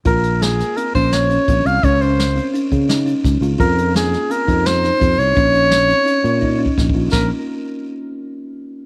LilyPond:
<<
  \new Staff \with { instrumentName = "Soprano saxophone" } { \time 5/4 \key bes \minor \tempo 4 = 170 bes'4 aes'4 bes'8 c''8 des''4. f''8 | des''8 c''4. r2. | bes'4 aes'4 bes'4 c''4. des''8~ | des''1 r4 |
bes'8 r1 r8 | }
  \new Staff \with { instrumentName = "Kalimba" } { \time 5/4 \key bes \minor f'4 bes4 c'8 des'4 des'8 c'4 | des'8 des'4 c'8 des'4 ees'8 des'4 f'8 | f'4 bes4 c'8 ees'4 ees'8 c'4 | des'8 des'4 c'8 des'4 ees'8 des'4 f'8 |
bes8 r1 r8 | }
  \new Staff \with { instrumentName = "Fretless electric bass" } { \clef bass \time 5/4 \key bes \minor bes,,2 r8 bes,,4. bes,,8 c,8 | des,2 r8 des4. des,8 des,8 | f,2 r8 f,4. f,8 c,8 | bes,,2 r8 bes,4. bes,,8 bes,,8 |
bes,,8 r1 r8 | }
  \new DrumStaff \with { instrumentName = "Drums" } \drummode { \time 5/4 <hh bd>8 hh8 <hh sn>8 <hh sn>8 hh8 <hh bd>8 <hh sn>8 hh8 <hh bd>8 hh8 | <hh bd>8 hh8 <hh sn>8 hh8 hh8 <hh bd>8 <hh sn>8 hh8 <hh bd sn>8 hh8 | <hh bd>8 hh8 <hh sn>8 <hh sn>8 hh8 <hh bd>8 <hh sn>8 <hh sn>8 <hh bd>8 hh8 | <hh bd>8 hh8 <hh sn>8 hh8 hh8 hh8 \tuplet 3/2 { bd8 r8 bd8 <bd sn>8 bd8 r8 } |
<bd rb sn>4 r4 r4 r4 r4 | }
>>